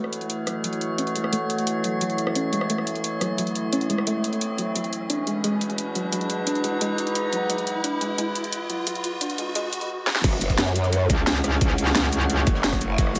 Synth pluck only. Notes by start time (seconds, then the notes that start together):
0.47 F#3
0.64 F#3
0.98 C#4
1.16 G#3
1.33 A3
1.84 F#3
2.01 F#3
2.36 C#4
2.53 G#3
2.70 A3
3.21 F#3
3.38 F#3
3.73 C#4
3.90 G#3
4.07 A3
4.58 F#3
4.76 F#3
5.10 D4
5.27 G#3
5.44 G#3
5.95 F#3
6.13 F#3
6.47 D4
6.64 G#3
6.81 G#3
7.33 F#3
7.50 F#3
7.84 D4
8.01 G#3
8.18 G#3
8.70 F#3
8.87 F#3
9.21 D4
9.38 G#3
9.55 G#3
10.07 F#3